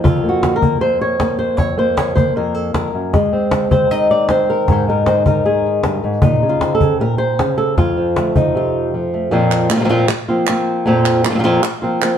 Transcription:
0.00 0.23 F3 medium
0.00 0.24 A#3 soft
0.00 0.55 F4 medium
0.05 0.80 F2 medium
0.05 cajon bass medium
0.24 0.62 A#3 soft
0.24 cajon slap soft
0.29 0.55 F#4 medium
0.43 cajon slap medium
0.56 0.81 A#4 medium
0.62 1.19 A#3 medium
0.62 cajon bass medium
0.81 1.57 F2 medium
0.81 1.01 C5 medium
1.01 1.38 C#5 medium
1.20 1.56 A#3 medium
1.20 cajon slap medium
1.39 1.57 C5 medium
1.39 cajon slap soft
1.57 2.35 F2 medium
1.57 1.77 C#5 medium
1.57 cajon bass medium
1.57 cajon slap soft
1.78 2.16 A#3 soft
1.78 1.97 C5 medium
1.78 cajon slap soft
1.97 2.15 C#5 medium
1.97 cajon slap medium
2.15 3.11 A#3 soft
2.15 2.35 C5 medium
2.15 cajon bass medium
2.36 2.73 F2 medium
2.36 2.54 A#4 medium
2.54 2.74 A4 medium
2.74 2.94 F2 soft
2.74 3.14 A#4 medium
2.74 cajon slap medium
2.94 3.13 F#2 soft
2.94 cajon slap soft
3.13 4.66 G#3 medium
3.13 cajon bass medium
3.13 cajon slap soft
3.33 3.71 C4 soft
3.33 cajon slap soft
3.51 cajon slap medium
3.71 4.29 C4 medium
3.71 3.91 C5 medium
3.71 cajon bass medium
3.91 4.66 D#3 medium
3.91 4.10 D#5 medium
4.11 4.30 D5 medium
4.29 4.88 C4 medium
4.29 4.68 C5 medium
4.29 cajon slap medium
4.49 4.88 A#4 medium
4.49 cajon slap soft
4.68 5.84 G#2 medium
4.68 4.89 C5 medium
4.68 cajon bass medium
4.68 cajon slap soft
4.87 5.26 D#3 medium
4.87 5.06 A#4 medium
4.87 cajon slap soft
5.06 5.26 C5 medium
5.06 cajon slap medium
5.26 5.44 D#3 medium
5.26 5.45 A#4 medium
5.26 cajon bass medium
5.45 6.20 D#3 medium
5.45 6.23 G#4 medium
5.66 6.21 D#4 soft
5.83 6.03 G2 medium
5.83 cajon slap medium
6.03 6.23 G#2 medium
6.03 cajon slap soft
6.22 6.42 A#2 medium
6.22 6.87 D#4 medium
6.22 cajon bass medium
6.42 6.80 C#3 medium
6.42 cajon slap soft
6.49 6.74 F4 medium
6.61 8.17 C4 soft
6.61 cajon slap medium
6.75 7.00 A4 medium
6.81 7.00 C#3 medium
6.81 cajon bass medium
7.00 7.39 A#2 medium
7.00 7.18 A#4 medium
7.18 7.57 C5 medium
7.39 7.76 C#3 soft
7.39 cajon slap medium
7.58 7.77 A4 medium
7.78 9.30 F2 medium
7.78 8.55 F4 medium
7.78 cajon bass medium
7.78 cajon slap soft
7.97 8.35 F3 medium
8.16 9.13 A3 soft
8.16 cajon slap medium
8.36 8.93 F3 medium
8.36 8.94 D#4 medium
8.36 cajon bass medium
8.55 8.93 C3 medium
8.55 9.32 F4 medium
8.94 9.30 F3 medium
9.14 9.30 A3 soft
9.31 9.69 F2 medium
9.31 9.69 A#2 medium
9.31 9.70 F3 medium
9.31 9.70 A#3 medium
9.31 9.70 C4 medium
9.31 9.69 F4 medium
9.51 clap medium
9.70 9.75 F3 soft
9.70 9.75 A#3 soft
9.70 9.76 C4 medium
9.70 9.76 F4 medium
9.70 clap medium
9.76 9.79 A#2 medium
9.76 9.79 F3 medium
9.76 9.79 A#3 soft
9.76 9.80 C4 medium
9.76 9.80 F4 medium
9.80 9.83 A#2 medium
9.80 9.84 F3 medium
9.80 9.84 A#3 medium
9.80 9.84 C4 medium
9.80 9.84 F4 medium
9.85 9.88 A#2 medium
9.85 9.88 F3 medium
9.85 9.89 A#3 medium
9.85 9.89 C4 medium
9.85 9.89 F4 medium
9.89 10.07 F2 medium
9.89 10.07 A#2 medium
9.89 10.07 F3 medium
9.89 10.07 A#3 medium
9.89 10.07 C4 medium
9.89 10.08 F4 medium
10.08 muted nylon-string guitar stroke medium
10.08 clap medium
10.28 10.47 F3 soft
10.28 10.47 A#3 soft
10.28 10.47 C4 medium
10.28 10.47 F4 medium
10.47 10.85 F3 medium
10.47 10.86 A#3 medium
10.47 10.86 C4 medium
10.47 10.86 F4 medium
10.47 clap medium
10.86 11.24 F2 medium
10.86 11.24 A#2 medium
10.86 11.24 F3 medium
10.86 11.24 A#3 medium
10.86 11.24 C4 medium
10.86 11.23 F4 medium
11.05 clap medium
11.24 11.29 F3 soft
11.24 11.29 A#3 medium
11.24 11.30 C4 medium
11.24 11.30 F4 medium
11.24 clap medium
11.30 11.33 A#2 soft
11.30 11.34 F3 medium
11.30 11.34 A#3 medium
11.30 11.34 C4 medium
11.30 11.34 F4 medium
11.34 11.37 A#2 medium
11.34 11.38 F3 medium
11.34 11.38 A#3 medium
11.34 11.39 C4 medium
11.34 11.39 F4 medium
11.39 11.43 A#2 medium
11.39 11.42 F3 medium
11.39 11.43 A#3 medium
11.39 11.43 C4 medium
11.39 11.44 F4 medium
11.44 11.61 F2 medium
11.44 11.62 A#2 medium
11.44 11.62 F3 medium
11.44 11.62 A#3 medium
11.44 11.62 C4 medium
11.44 11.63 F4 medium
11.63 muted nylon-string guitar stroke medium
11.63 clap medium
11.82 12.01 F3 soft
11.82 12.01 A#3 soft
11.82 12.01 C4 medium
11.82 12.01 F4 medium
12.02 12.18 F3 medium
12.02 12.18 A#3 medium
12.02 12.18 C4 medium
12.02 12.18 F4 medium
12.02 clap medium

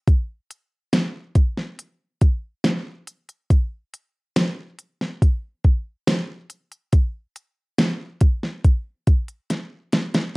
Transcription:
0.07 kick medium
0.07 closed hi-hat medium
0.51 closed hi-hat medium
0.93 snare medium
0.93 closed hi-hat medium
1.35 kick medium
1.35 closed hi-hat medium
1.57 snare soft
1.79 closed hi-hat medium
2.21 kick medium
2.21 closed hi-hat medium
2.64 snare medium
2.64 closed hi-hat medium
3.07 closed hi-hat medium
3.29 closed hi-hat soft
3.50 kick medium
3.50 closed hi-hat medium
3.94 closed hi-hat medium
4.36 snare medium
4.36 closed hi-hat medium
4.79 closed hi-hat medium
5.01 snare soft
5.22 kick medium
5.22 closed hi-hat medium
5.64 kick medium
5.64 closed hi-hat medium
6.07 snare medium
6.07 closed hi-hat medium
6.50 closed hi-hat medium
6.72 closed hi-hat soft
6.93 kick medium
6.93 closed hi-hat medium
7.36 closed hi-hat medium
7.78 snare loud
7.78 closed hi-hat medium
8.21 kick medium
8.21 closed hi-hat medium
8.43 snare soft
8.64 kick medium
8.64 closed hi-hat medium
9.07 kick medium
9.07 closed hi-hat medium
9.28 closed hi-hat soft
9.50 snare soft
9.50 closed hi-hat medium
9.92 snare medium
9.92 closed hi-hat medium
10.14 snare medium
10.14 closed hi-hat soft

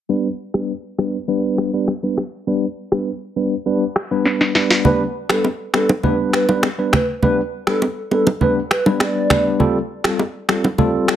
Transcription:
0.09 0.27 G3 medium
0.09 0.27 B3 medium
0.09 0.27 D4 medium
0.09 0.27 B4 medium
0.54 0.71 G3 medium
0.54 0.71 B3 medium
0.54 0.71 D4 medium
0.54 0.71 B4 medium
0.54 finger snap medium
0.54 cross-stick loud
0.98 1.16 G3 medium
0.98 1.16 B3 medium
0.98 1.16 D4 medium
0.98 1.16 B4 medium
0.98 finger snap medium
0.98 cross-stick medium
1.28 1.70 G3 medium
1.28 1.70 B3 medium
1.28 1.70 D4 medium
1.28 1.70 B4 loud
1.58 finger snap medium
1.58 cross-stick medium
1.73 1.90 G3 medium
1.73 1.90 B3 medium
1.73 1.90 D4 medium
1.73 1.90 B4 medium
1.88 finger snap medium
1.88 cross-stick medium
2.03 2.19 G3 medium
2.03 2.19 B3 medium
2.03 2.20 D4 medium
2.03 2.20 B4 medium
2.18 finger snap medium
2.18 cross-stick medium
2.47 2.64 G3 medium
2.47 2.65 B3 medium
2.47 2.65 D4 medium
2.47 2.65 B4 medium
2.92 3.09 G3 medium
2.92 3.09 B3 medium
2.92 3.09 D4 medium
2.92 3.09 B4 medium
2.92 finger snap medium
2.92 cross-stick loud
3.36 3.54 G3 medium
3.36 3.54 B3 medium
3.36 3.54 D4 medium
3.36 3.54 B4 medium
3.66 3.83 G3 medium
3.66 3.83 B3 medium
3.66 3.83 D4 medium
3.66 3.84 B4 loud
3.96 finger snap medium
3.96 cross-stick medium
4.11 4.52 G3 medium
4.11 4.52 B3 medium
4.11 4.52 D4 medium
4.11 4.52 B4 medium
4.25 snare medium
4.41 snare medium
4.55 4.82 G3 medium
4.55 4.82 B3 medium
4.55 4.83 D4 medium
4.55 4.83 B4 medium
4.55 snare medium
4.71 snare medium
4.85 5.02 G3 medium
4.85 5.02 B3 medium
4.85 5.02 D4 medium
4.85 5.02 B4 loud
4.85 4.99 B4 loud
4.85 low conga medium
5.29 5.46 G3 medium
5.29 5.46 B3 medium
5.29 5.46 D4 medium
5.29 5.43 A4 medium
5.29 5.46 B4 medium
5.29 finger snap medium
5.29 cross-stick loud
5.44 high bongo medium
5.74 5.91 G3 medium
5.74 5.91 B3 medium
5.74 5.91 D4 medium
5.74 5.88 A4 medium
5.74 5.92 B4 medium
5.74 finger snap medium
5.74 cross-stick medium
5.74 high bongo medium
5.89 high bongo medium
5.89 low bongo medium
6.03 6.45 G3 medium
6.03 6.45 B3 medium
6.03 6.45 D4 medium
6.03 6.45 B4 loud
6.03 6.17 B4 medium
6.03 low conga medium
6.33 6.47 B4 medium
6.33 finger snap medium
6.33 cross-stick medium
6.49 6.65 G3 medium
6.49 6.65 B3 medium
6.49 6.65 D4 medium
6.49 6.65 B4 medium
6.49 low bongo medium
6.63 finger snap medium
6.63 cross-stick medium
6.63 high bongo medium
6.78 6.95 G3 medium
6.78 6.95 B3 medium
6.78 6.95 D4 medium
6.78 6.95 B4 medium
6.93 7.07 B4 medium
6.93 finger snap medium
6.93 cross-stick medium
6.93 low conga medium
7.22 7.40 G3 medium
7.22 7.40 B3 medium
7.22 7.40 D4 medium
7.22 7.40 B4 medium
7.22 7.36 B4 loud
7.22 low conga medium
7.67 7.84 G3 medium
7.67 7.84 B3 medium
7.67 7.84 D4 medium
7.67 7.80 A4 medium
7.67 7.84 B4 medium
7.67 finger snap medium
7.67 cross-stick loud
7.82 high bongo medium
8.11 8.29 G3 medium
8.11 8.29 B3 medium
8.11 8.29 D4 medium
8.11 8.25 A4 medium
8.11 8.29 B4 medium
8.11 high bongo medium
8.27 high bongo medium
8.27 low bongo medium
8.41 8.58 G3 medium
8.41 8.58 B3 medium
8.41 8.59 D4 medium
8.41 8.59 B4 medium
8.41 8.55 B4 medium
8.41 low conga medium
8.71 8.84 B4 medium
8.71 finger snap medium
8.71 cross-stick medium
8.86 9.27 G3 medium
8.86 9.27 B3 medium
8.86 9.27 D4 medium
8.86 9.27 B4 medium
8.86 low bongo medium
9.00 9.44 D5 medium
9.00 finger snap medium
9.00 cross-stick medium
9.00 high bongo medium
9.30 9.58 G3 medium
9.30 9.58 B3 medium
9.30 9.58 D4 medium
9.30 9.58 B4 medium
9.30 finger snap medium
9.30 cross-stick medium
9.30 low conga medium
9.59 9.77 G3 medium
9.59 9.77 C4 medium
9.59 9.77 F4 medium
9.59 9.77 A4 loud
9.59 low conga medium
10.04 10.21 G3 medium
10.04 10.21 C4 medium
10.04 10.21 F4 medium
10.04 10.22 A4 medium
10.04 finger snap medium
10.04 cross-stick loud
10.19 high bongo medium
10.49 10.66 G3 medium
10.49 10.66 C4 medium
10.49 10.66 F4 medium
10.49 10.67 A4 medium
10.49 finger snap medium
10.49 cross-stick medium
10.49 high bongo medium
10.64 high bongo medium
10.64 low bongo medium
10.78 11.16 G3 medium
10.78 11.16 C4 medium
10.78 11.16 F4 medium
10.78 11.16 A4 loud
10.78 low conga medium
11.08 finger snap medium
11.08 cross-stick medium

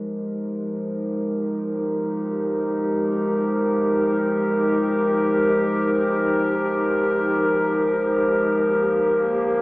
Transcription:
0.00 8.44 F1 medium
0.00 9.62 F3 medium
0.00 8.47 G#3 medium
0.00 8.47 D#4 medium
0.00 9.62 G4 medium
0.00 9.62 A#4 medium
8.47 9.62 G1 medium
8.57 9.62 A#3 medium
9.38 9.62 D4 medium

